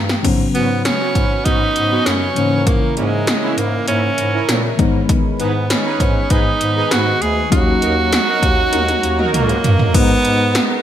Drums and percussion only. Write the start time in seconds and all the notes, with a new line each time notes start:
0.09 snare
0.24 kick, closed hi-hat, crash
0.55 closed hi-hat
0.85 snare, closed hi-hat
1.15 kick, closed hi-hat
1.46 kick, closed hi-hat
1.76 closed hi-hat
2.06 snare, closed hi-hat
2.36 closed hi-hat
2.67 kick, closed hi-hat
2.97 closed hi-hat
3.27 snare, closed hi-hat
3.58 closed hi-hat
3.88 closed hi-hat
4.18 closed hi-hat
4.49 snare, closed hi-hat
4.79 kick, closed hi-hat
5.09 kick, closed hi-hat
5.40 closed hi-hat
5.70 snare, closed hi-hat
6.00 kick, closed hi-hat
6.30 kick, closed hi-hat
6.61 closed hi-hat
6.91 snare, closed hi-hat
7.22 closed hi-hat
7.52 kick, closed hi-hat
7.82 closed hi-hat
8.13 snare, closed hi-hat
8.43 kick, closed hi-hat
8.73 closed hi-hat, high tom
8.88 closed hi-hat, high tom
9.03 closed hi-hat
9.19 mid tom
9.34 closed hi-hat, mid tom
9.49 closed hi-hat
9.64 closed hi-hat, floor tom
9.79 floor tom
9.94 kick, closed hi-hat, crash
10.25 closed hi-hat
10.55 snare, closed hi-hat